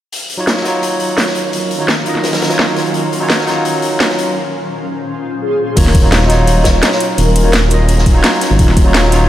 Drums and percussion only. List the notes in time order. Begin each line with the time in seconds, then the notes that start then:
0.12 closed hi-hat
0.30 closed hi-hat
0.47 snare, closed hi-hat
0.57 snare
0.65 snare, closed hi-hat
0.83 closed hi-hat
1.00 closed hi-hat
1.17 snare, closed hi-hat
1.27 snare
1.35 closed hi-hat
1.53 closed hi-hat
1.71 closed hi-hat
1.88 snare, closed hi-hat
2.06 closed hi-hat
2.15 snare
2.24 snare, closed hi-hat
2.33 snare, closed hi-hat
2.42 snare, closed hi-hat
2.50 snare, closed hi-hat
2.59 snare
2.76 snare, closed hi-hat
2.86 closed hi-hat
2.94 closed hi-hat
3.13 closed hi-hat
3.30 snare, closed hi-hat
3.39 snare
3.47 snare, closed hi-hat
3.65 closed hi-hat
3.82 closed hi-hat
4.00 snare, closed hi-hat
4.09 snare
4.19 closed hi-hat
5.77 kick, closed hi-hat, crash
5.86 snare
5.95 kick, closed hi-hat
6.12 snare, closed hi-hat
6.21 snare
6.30 snare, closed hi-hat
6.47 closed hi-hat
6.64 kick, snare, closed hi-hat
6.82 snare, closed hi-hat
6.92 snare
7.00 closed hi-hat
7.18 closed hi-hat
7.36 closed hi-hat
7.53 snare, closed hi-hat
7.70 closed hi-hat
7.88 closed hi-hat
7.98 snare
8.06 kick, closed hi-hat
8.24 snare, closed hi-hat, open hi-hat
8.41 snare, closed hi-hat
8.51 closed hi-hat
8.59 kick, closed hi-hat
8.68 snare
8.77 kick, closed hi-hat
8.94 snare, closed hi-hat
9.04 snare
9.12 snare, closed hi-hat